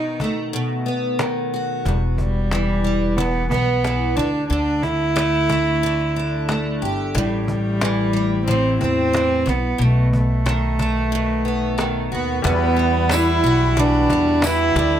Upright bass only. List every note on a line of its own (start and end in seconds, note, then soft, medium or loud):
1.86 3.47 E1 loud
3.51 4.13 B1 medium
4.17 4.48 D2 medium
4.50 6.78 D2 loud
6.82 7.12 G1 medium
7.15 8.76 A1 loud
8.81 9.43 E2 medium
9.47 9.77 B1 medium
9.79 12.07 B1 loud
12.12 12.42 D#2 medium
12.45 13.40 E2 loud
13.43 14.06 B1 medium
14.10 14.72 E2 medium
14.76 15.00 D2 loud